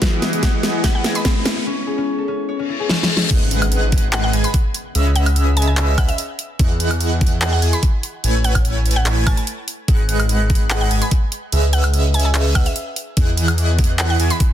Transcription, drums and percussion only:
0.02 kick, snare, closed hi-hat
0.22 snare, closed hi-hat
0.33 closed hi-hat
0.43 kick, snare, closed hi-hat
0.63 snare, closed hi-hat
0.84 kick, snare, closed hi-hat
1.04 snare, closed hi-hat
1.15 closed hi-hat
1.25 kick, snare, closed hi-hat
1.45 snare, closed hi-hat
2.89 snare
3.03 snare
3.17 snare
3.31 kick, closed hi-hat, crash
3.51 closed hi-hat
3.62 closed hi-hat, high woodblock
3.72 closed hi-hat
3.92 kick, closed hi-hat
3.98 closed hi-hat
4.13 clap, closed hi-hat
4.33 closed hi-hat
4.44 closed hi-hat
4.54 kick, closed hi-hat
4.74 closed hi-hat
4.95 closed hi-hat
5.16 closed hi-hat
5.26 closed hi-hat, high woodblock
5.36 closed hi-hat
5.57 closed hi-hat
5.62 closed hi-hat
5.77 clap, closed hi-hat
5.98 kick, closed hi-hat, high woodblock
6.09 closed hi-hat
6.18 closed hi-hat
6.39 closed hi-hat
6.59 kick, closed hi-hat
6.80 closed hi-hat
6.91 closed hi-hat, high woodblock
7.01 closed hi-hat
7.21 kick, closed hi-hat
7.27 closed hi-hat
7.42 clap, closed hi-hat
7.62 closed hi-hat
7.73 closed hi-hat
7.83 kick, closed hi-hat
8.03 closed hi-hat
8.24 closed hi-hat
8.44 closed hi-hat
8.55 kick, closed hi-hat, high woodblock
8.65 closed hi-hat
8.86 closed hi-hat
8.91 closed hi-hat
9.06 clap, closed hi-hat
9.27 kick, closed hi-hat, high woodblock
9.37 closed hi-hat
9.47 closed hi-hat
9.68 closed hi-hat
9.88 kick, closed hi-hat
10.09 closed hi-hat
10.20 closed hi-hat, high woodblock
10.29 closed hi-hat
10.50 kick, closed hi-hat
10.55 closed hi-hat
10.70 clap, closed hi-hat
10.91 closed hi-hat
11.02 closed hi-hat
11.11 kick, closed hi-hat
11.32 closed hi-hat
11.52 closed hi-hat
11.73 closed hi-hat
11.84 closed hi-hat, high woodblock
11.94 closed hi-hat
12.14 closed hi-hat
12.20 closed hi-hat
12.35 clap, closed hi-hat
12.55 kick, closed hi-hat, high woodblock
12.66 closed hi-hat
12.76 closed hi-hat
12.96 closed hi-hat
13.17 kick, closed hi-hat
13.37 closed hi-hat
13.48 closed hi-hat, high woodblock
13.58 closed hi-hat
13.79 kick, closed hi-hat
13.84 closed hi-hat
13.99 clap, closed hi-hat
14.20 closed hi-hat
14.30 closed hi-hat
14.40 kick, closed hi-hat

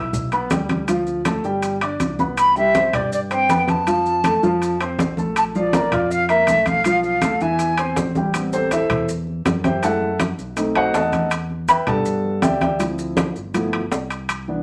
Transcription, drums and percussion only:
0.13 high conga, low conga, maracas
0.32 high conga, high timbale, maracas
0.50 high conga, high timbale, low timbale, maracas
0.69 high conga, high timbale, maracas
0.88 high conga, high timbale, maracas
1.07 high conga, maracas
1.25 high conga, high timbale, maracas
1.44 maracas
1.62 high conga, high timbale, maracas
1.81 high conga, high timbale, maracas
2.00 high conga, high timbale, maracas
2.19 high conga, maracas
2.37 high conga, high timbale, maracas
2.56 high conga, maracas
2.75 high conga, high timbale, maracas
2.93 high conga, low conga, high timbale, maracas
3.12 high conga, maracas
3.31 high conga, high timbale, maracas
3.49 high conga, high timbale, maracas
3.68 high conga, high timbale, maracas
3.87 high conga, high timbale, maracas
4.05 high conga, maracas
4.24 high conga, high timbale, maracas
4.43 maracas
4.61 high conga, high timbale, maracas
4.80 high conga, high timbale, maracas
4.99 high conga, high timbale, low timbale, maracas
5.17 high conga, maracas
5.36 high conga, high timbale, maracas
5.55 high conga, maracas
5.73 high conga, high timbale, maracas
5.92 high conga, low conga, high timbale, maracas
6.10 high conga, maracas
6.29 high conga, high timbale, maracas
6.47 high conga, high timbale, maracas
6.66 high conga, high timbale, maracas
6.84 high timbale, maracas
7.03 high conga, maracas
7.22 high conga, high timbale, maracas
7.41 maracas
7.59 high conga, high timbale, maracas
7.78 high conga, high timbale, maracas
7.96 high conga, high timbale, low timbale, maracas
8.15 high conga, maracas
8.34 high conga, high timbale, maracas
8.53 high conga, maracas
8.71 high conga, high timbale, low timbale, maracas
8.90 high conga, low conga, high timbale, maracas
9.09 high conga, maracas
9.27 high conga
9.46 high conga, high timbale, low timbale, maracas
9.64 high conga, high timbale, maracas
9.83 high conga, high timbale, maracas
10.02 high conga
10.20 high conga, high timbale, low timbale, maracas
10.39 high conga, maracas
10.57 high conga, high timbale, maracas
10.75 high conga, high timbale
10.94 high conga, high timbale, low timbale, maracas
11.13 high conga, high timbale, maracas
11.31 high conga, high timbale, maracas
11.50 high conga
11.68 high conga, high timbale, low timbale, maracas
11.87 high conga, low conga, high timbale, maracas
12.05 high conga, maracas
12.24 high conga
12.42 high conga, high timbale, low timbale, maracas
12.61 high conga, high timbale, maracas
12.80 high conga, high timbale, maracas
12.98 high conga, maracas
13.17 high conga, high timbale, low timbale, maracas
13.35 high conga, maracas
13.54 high conga, high timbale, maracas
13.73 high conga, high timbale
13.92 high conga, high timbale, low timbale, maracas
14.10 high timbale, maracas
14.29 high conga, high timbale, maracas
14.48 high conga

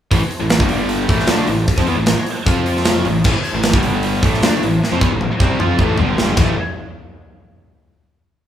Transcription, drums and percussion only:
0.11 kick, open hi-hat
0.31 open hi-hat
0.50 snare, open hi-hat
0.60 kick
0.69 open hi-hat
0.89 open hi-hat
1.09 kick, open hi-hat
1.19 snare
1.27 snare, open hi-hat
1.47 open hi-hat
1.68 kick, open hi-hat
1.78 kick
1.87 open hi-hat
2.06 snare, open hi-hat
2.26 open hi-hat
2.46 kick, open hi-hat
2.66 open hi-hat
2.77 snare
2.85 snare, open hi-hat
3.05 open hi-hat
3.24 kick, crash
3.44 open hi-hat
3.63 snare, open hi-hat
3.73 kick
3.83 open hi-hat
4.03 open hi-hat
4.23 kick, open hi-hat
4.34 snare
4.43 snare, open hi-hat
4.63 open hi-hat
4.84 snare
5.01 kick
5.21 mid tom
5.40 kick
5.60 mid tom
5.79 kick
5.98 floor tom
6.18 snare
6.37 kick, floor tom, crash

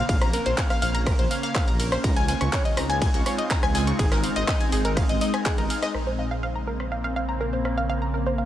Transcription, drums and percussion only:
0.09 kick, closed hi-hat, ride
0.21 cross-stick, closed hi-hat
0.33 open hi-hat, ride
0.46 closed hi-hat
0.58 kick, snare, clap, closed hi-hat, ride
0.70 cross-stick, snare, closed hi-hat
0.82 snare, open hi-hat, ride
0.95 closed hi-hat
1.07 kick, cross-stick, closed hi-hat, ride
1.19 closed hi-hat
1.31 snare, open hi-hat, ride
1.43 snare, closed hi-hat
1.54 kick, cross-stick, snare, clap, closed hi-hat, ride
1.68 closed hi-hat
1.80 open hi-hat
1.92 cross-stick, snare, closed hi-hat
2.04 kick, closed hi-hat, ride
2.16 closed hi-hat
2.28 open hi-hat, ride
2.41 cross-stick, closed hi-hat
2.52 kick, snare, clap, closed hi-hat, ride
2.65 closed hi-hat, ride
2.77 cross-stick, open hi-hat, ride
2.90 closed hi-hat
3.02 kick, closed hi-hat, ride
3.14 snare, closed hi-hat
3.26 cross-stick, open hi-hat, ride
3.39 closed hi-hat
3.50 kick, snare, clap, closed hi-hat, ride
3.63 cross-stick, closed hi-hat, ride
3.75 snare, open hi-hat, ride
3.87 closed hi-hat, ride
3.99 kick, closed hi-hat, ride
4.12 cross-stick, snare, closed hi-hat, ride
4.24 open hi-hat, ride
4.36 closed hi-hat, ride
4.48 kick, cross-stick, snare, clap, closed hi-hat, ride
4.61 snare, closed hi-hat
4.71 snare, open hi-hat, ride
4.85 closed hi-hat
4.97 kick, cross-stick, closed hi-hat, ride
5.09 closed hi-hat
5.21 snare, open hi-hat, ride
5.33 cross-stick, snare, closed hi-hat
5.45 kick, snare, clap, closed hi-hat, ride
5.58 closed hi-hat
5.70 open hi-hat
5.83 cross-stick, snare, closed hi-hat
5.94 cross-stick
6.80 cross-stick
7.65 cross-stick

